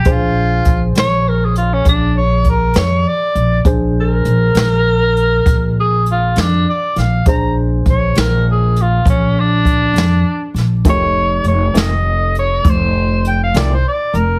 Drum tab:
HH |x-xx-xx-xx-x|x-xx-xx-xx-x|x-xx-xx-xx-x|x-xx-xx-xx-x|
SD |---o-----o--|---o-----o-o|---o-----o-o|---o-----o--|
BD |o-o---o-o---|o-----o-----|o-o---o-o---|o-----o-----|